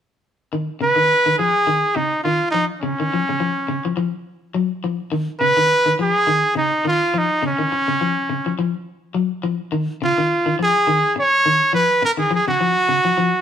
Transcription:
0.53 clean electric guitar D#3
0.81 clean electric guitar C#3, trumpet B4
0.96 clean electric guitar D#3
1.26 clean electric guitar D#3
1.38 clean electric guitar F3, trumpet G#4
1.67 clean electric guitar D#3
1.96 clean electric guitar C#3, trumpet D#4
2.24 clean electric guitar D#3, trumpet F4
2.51 clean electric guitar F3, trumpet D#4
2.81 clean electric guitar C#3, trumpet C#4
3.00 clean electric guitar D#3
3.13 clean electric guitar F3
3.29 clean electric guitar C#3
3.40 clean electric guitar F3
3.68 clean electric guitar C#3
3.85 clean electric guitar F3
3.97 clean electric guitar F3
4.54 clean electric guitar F#3
4.84 clean electric guitar F3
5.12 clean electric guitar D#3
5.40 clean electric guitar C#3, trumpet B4
5.57 clean electric guitar D#3
5.86 clean electric guitar D#3
5.99 clean electric guitar F3, trumpet G#4
6.27 clean electric guitar D#3
6.55 clean electric guitar C#3, trumpet D#4
6.85 clean electric guitar D#3, trumpet F4
7.14 clean electric guitar F3, trumpet D#4
7.43 clean electric guitar C#3
7.47 trumpet C#4
7.59 clean electric guitar D#3
7.72 muted clean electric guitar stroke
7.88 clean electric guitar C#3
8.01 clean electric guitar F3
8.29 clean electric guitar C#3
8.46 clean electric guitar F3
8.59 clean electric guitar F3
9.14 clean electric guitar F#3
9.43 clean electric guitar F3
9.72 clean electric guitar D#3
10.02 clean electric guitar C#3, trumpet F4
10.18 clean electric guitar D#3
10.46 clean electric guitar D#3
10.59 clean electric guitar F3, trumpet G#4
10.87 clean electric guitar D#3
11.16 trumpet C#5, muted clean electric guitar stroke
11.46 clean electric guitar D#3
11.73 clean electric guitar F3, trumpet B4
12.02 trumpet A#4, muted clean electric guitar stroke
12.17 clean electric guitar D#3, trumpet G#4
12.31 clean electric guitar F3
12.35 trumpet G#4
12.48 clean electric guitar C#3, trumpet F#4
12.61 clean electric guitar F3
12.89 clean electric guitar C#3
13.05 clean electric guitar F3
13.18 clean electric guitar F3

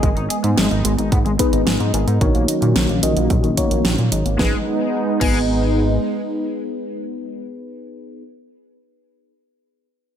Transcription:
Already playing: analog synth pad G#3 D#5
0.03 analog synth bass G#1, overdriven electric guitar G#3, analog synth pad B3, kick, closed hi-hat
0.17 analog synth bass G#1, overdriven electric guitar D#4, closed hi-hat
0.30 overdriven electric guitar G#4, closed hi-hat
0.44 analog synth bass G#2, overdriven electric guitar G#3, closed hi-hat
0.58 analog synth bass G#1, overdriven electric guitar G#3, snare, closed hi-hat
0.71 analog synth bass G#1, overdriven electric guitar D#4, closed hi-hat
0.85 analog synth bass G#1, overdriven electric guitar G#3, closed hi-hat
0.99 analog synth bass G#1, overdriven electric guitar D#4, closed hi-hat
1.12 analog synth bass G#1, overdriven electric guitar B3, kick, closed hi-hat
1.26 analog synth bass G#1, overdriven electric guitar G#3, closed hi-hat
1.39 fm electric piano B3 D#4 G#4 B4, overdriven electric guitar D#4, kick, closed hi-hat
1.53 analog synth bass G#1, overdriven electric guitar D#4, closed hi-hat
1.67 analog synth bass G#1, overdriven electric guitar G#3, snare, closed hi-hat
1.80 analog synth bass G#2, overdriven electric guitar D#4, closed hi-hat
1.94 analog synth bass G#1, fm electric piano B3 D#4 G#4 A#4, overdriven electric guitar G#4, closed hi-hat
2.08 analog synth bass G#2, overdriven electric guitar D#4, closed hi-hat
2.21 analog synth bass A#1, overdriven electric guitar D#3, analog synth pad D#3 F#3 A#3 C#4 F#4, fm electric piano D#4 F#4 A#4 C#5, kick, closed hi-hat
2.35 analog synth bass A#1, overdriven electric guitar A#3, closed hi-hat
2.48 overdriven electric guitar D#4, closed hi-hat
2.62 analog synth bass A#2, overdriven electric guitar D#3, closed hi-hat
2.76 analog synth bass A#1, overdriven electric guitar D#3, snare, closed hi-hat
2.89 analog synth bass A#1, overdriven electric guitar A#3, closed hi-hat
3.03 analog synth bass A#1, overdriven electric guitar D#3, fm electric piano D#4 F#4 A#4 D#5, closed hi-hat
3.17 analog synth bass A#1, overdriven electric guitar A#3, closed hi-hat
3.30 analog synth bass A#1, overdriven electric guitar F#3, kick, closed hi-hat
3.44 analog synth bass A#1, overdriven electric guitar D#3, closed hi-hat
3.57 overdriven electric guitar A#3, fm electric piano D#4 F#4 A#4 C#5, kick, closed hi-hat
3.71 analog synth bass A#1, overdriven electric guitar A#3, closed hi-hat
3.85 analog synth bass A#1, overdriven electric guitar D#3, snare, closed hi-hat
3.98 analog synth bass A#2, overdriven electric guitar A#3, closed hi-hat
4.12 analog synth bass G#1, overdriven electric guitar D#4, closed hi-hat
4.26 analog synth bass G#1, overdriven electric guitar A#3, closed hi-hat
4.39 analog synth bass G#1, overdriven electric guitar G#3, analog synth pad G#3 B3 D#4, fm electric piano B3 D#4 G#4 B4, kick, snare
5.21 analog synth bass G#1, overdriven electric guitar G#3, fm electric piano B3 D#4 G#4 B4, kick, crash

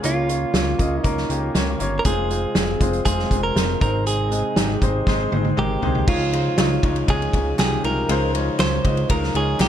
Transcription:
Already playing: tonewheel organ C#3 F4
0.03 analog synth bass C#2, grand piano C#3 A#3 C#4 F4 C#5, tonewheel organ A#3, clean electric guitar F4, closed hi-hat
0.28 grand piano A#3 C#4 F4 C#5, closed hi-hat
0.54 analog synth bass C#2, grand piano A#3 C#4 F4 C#5, snare, closed hi-hat
0.78 analog synth bass C#2, grand piano A#3 C#4 F4 D#5, kick, closed hi-hat
1.03 analog synth bass C#2, grand piano A#3 C#4 F4 A#4, clean electric guitar D#4, kick, closed hi-hat
1.17 snare
1.29 analog synth bass C#2, grand piano A#3 C#4 F4 G4, closed hi-hat
1.54 analog synth bass C#2, grand piano A#3 C#4 F4 C#5, snare, closed hi-hat
1.79 analog synth bass G1, grand piano A#3 C#4 F4 C#5, closed hi-hat
1.99 clean electric guitar A#4
2.05 analog synth bass F1, tonewheel organ C3 G#3, grand piano G#3 C4 F4 C5, clean electric guitar G#4, kick, closed hi-hat
2.30 grand piano G#3 C4 F4 C5, closed hi-hat
2.55 analog synth bass F1, grand piano G#3 C4 F4 G#4, snare, closed hi-hat
2.80 analog synth bass F1, grand piano G#3 C4 F4 C5, kick, closed hi-hat
2.93 closed hi-hat
3.05 analog synth bass F1, grand piano G#3 C4 F4 C5, clean electric guitar G#4, kick, closed hi-hat
3.19 snare
3.30 analog synth bass F1, grand piano G#3 C4 F4 C5, kick, closed hi-hat
3.43 clean electric guitar A#4
3.55 analog synth bass F1, grand piano G#3 C4 F4 C5, snare, closed hi-hat
3.80 analog synth bass G#1, grand piano G#2 G#3 C4 D#4 C5, tonewheel organ D#4, clean electric guitar A#4, kick, closed hi-hat
4.07 clean electric guitar G#4, closed hi-hat
4.30 grand piano G#3 C4 D#4 D#5, closed hi-hat
4.56 analog synth bass G#1, grand piano G#3 C4 D#4 G4, snare, closed hi-hat
4.81 analog synth bass G#1, grand piano G#3 C4 D#4 C5, kick, closed hi-hat
5.07 analog synth bass G#1, grand piano G#3 C4 D#4 C5, kick, snare
5.31 analog synth bass G#1, grand piano G#3 C4 D#4 C5, high tom
5.45 high tom
5.57 analog synth bass G#1, grand piano G#3 C4 D#4 A#4, clean electric guitar G4, mid tom
5.82 analog synth bass C2, grand piano G#3 C4 D#4 C5, floor tom
5.95 floor tom
6.07 analog synth bass C#2, tonewheel organ C#3 F3 D#4, grand piano C#3 G#3 D#4 F4 C#5, clean electric guitar F4, kick, crash
6.32 grand piano G#3 D#4 F4 C5, ride
6.57 analog synth bass C#2, grand piano G#3 D#4 F4 C#5, snare, clap, ride
6.83 analog synth bass C#2, grand piano G#3 D#4 F4 C#5, kick, ride
6.96 ride
7.07 analog synth bass C#2, grand piano G#3 D#4 F4 C#5, clean electric guitar G#4, kick, ride
7.22 ride
7.32 analog synth bass C#2, grand piano G#3 D#4 F4 C#5, kick, ride
7.58 analog synth bass C2, grand piano G#3 D#4 F4 G4, clean electric guitar G#4, snare, clap, ride
7.83 analog synth bass C2, grand piano G#3 D#4 F4 A#4, clean electric guitar A#4, ride
8.09 analog synth bass C#2, grand piano C#3 G#3 D#4 F4 C5, ride
8.33 grand piano G#3 D#4 F4 C#5, ride
8.59 analog synth bass C#2, grand piano G#3 D#4 F4 C#5, clean electric guitar C5, snare, clap, ride
8.84 analog synth bass C#2, grand piano G#3 D#4 F4 D#5, kick, ride
8.97 ride
9.09 analog synth bass C#2, grand piano G#3 D#4 F4 A#4, clean electric guitar A#4, kick, ride
9.23 snare
9.34 analog synth bass C#2, grand piano G#3 D#4 F4 C#5, clean electric guitar G#4, ride
9.59 analog synth bass C2, grand piano G#3 D#4 F4 A#4, clean electric guitar G4, snare, clap, ride

